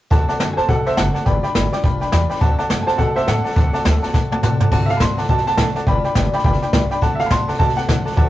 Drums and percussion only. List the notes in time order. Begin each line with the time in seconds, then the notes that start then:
0.11 kick, snare
0.29 snare
0.40 snare, hi-hat pedal
0.58 snare
0.69 kick, snare
0.86 snare
0.97 snare, hi-hat pedal
1.15 snare
1.26 kick, snare
1.44 snare
1.55 snare, hi-hat pedal
1.73 snare
1.84 kick, snare
2.02 snare
2.12 snare, hi-hat pedal
2.30 snare
2.36 snare
2.41 kick, snare
2.59 snare
2.70 snare, hi-hat pedal
2.88 snare
2.99 kick, snare
3.17 snare
3.28 snare, hi-hat pedal
3.46 snare
3.51 snare
3.56 kick, snare
3.74 snare
3.85 snare, hi-hat pedal
4.03 snare
4.09 snare
4.14 kick, snare
4.32 high tom
4.43 hi-hat pedal, mid tom
4.60 floor tom
4.71 kick, snare, crash
4.89 snare
5.00 kick, snare, hi-hat pedal
5.18 snare
5.24 snare
5.29 kick, snare
5.38 snare
5.47 snare
5.57 kick, snare, hi-hat pedal
5.75 snare
5.87 kick, snare
6.04 snare
6.15 kick, snare, hi-hat pedal
6.33 snare
6.39 snare
6.44 kick, snare
6.53 snare
6.62 snare
6.73 kick, snare, hi-hat pedal
6.91 snare
7.02 kick, snare
7.20 snare
7.30 kick, snare, hi-hat pedal
7.49 snare
7.54 snare
7.60 kick, snare
7.69 snare
7.78 snare
7.89 kick, snare, hi-hat pedal
8.07 snare
8.12 snare
8.17 kick, snare